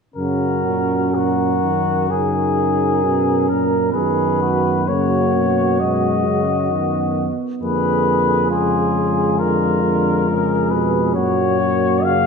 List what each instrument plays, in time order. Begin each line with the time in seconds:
0.14 tuba F#2, trombone C#3, euphonium C#4, flugelhorn F#4, cornet A#4
0.66 trombone A#2
1.13 trombone A#2, cornet F#4, flugelhorn A#4
1.62 trombone D#3
2.08 trombone C#3, euphonium D#4, cornet G#4, flugelhorn A#4
3.03 trombone B2, euphonium C#4
3.49 trombone A#2, cornet A#4
3.93 tuba F#2, trombone D#3, euphonium B3, flugelhorn G#4, cornet B4
4.42 flugelhorn F#4
4.86 trombone C#3, euphonium A#3, flugelhorn F#4, cornet C#5
5.36 trombone B2
5.80 trombone B2, euphonium G#3, cornet D#5
6.26 trombone C#3
6.70 trombone D#3, euphonium B3
7.61 tuba F2, trombone D3, euphonium A#3, flugelhorn G#4, cornet B4
8.50 trombone C#3, euphonium G#3, flugelhorn F4, cornet G#4
9.38 trombone D3, flugelhorn F4, cornet A#4
9.84 trombone D3
10.29 trombone C#3, flugelhorn G#4
10.71 trombone B2, cornet B4
11.14 tuba F#2, trombone A#2, euphonium A#3, flugelhorn F#4, cornet C#5
11.59 flugelhorn F#4
12.02 trombone C#3, euphonium A#3, cornet F5